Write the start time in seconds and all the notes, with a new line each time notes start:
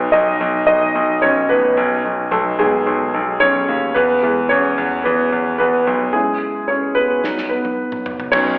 Already playing: F#3 B3 D#4 B4
0.12 B1 D#4 D#5
0.41 B1
0.67 B1 D#4 D#5
0.95 B1
1.22 B1 C#4 C#5
1.49 A1 B3 B4
1.77 B1
2.05 B1
2.31 B1 A3 A4
2.59 B1 F#3 G#3 B3 D#4 G#4
2.87 B1
3.14 B1
3.40 B1 C#4 C#5
3.68 D#2
3.94 E2 B3 B4
4.22 E2 G#3 B3 E4
4.49 E2 C#4 C#5
4.78 E2
5.04 E2 B3 B4
5.32 E2
5.58 E2 B3 B4
5.87 B1
6.13 G#3 C#4 E4 G#4
6.68 C#4 C#5
6.95 B3 B4
7.23 F#3 B3 D#4, snare
7.38 snare
7.49 B3 B4
7.65 high tom
7.92 mid tom
8.06 floor tom
8.20 floor tom
8.32 B1 F#3 B3 C#4 D#4 C#5, kick, crash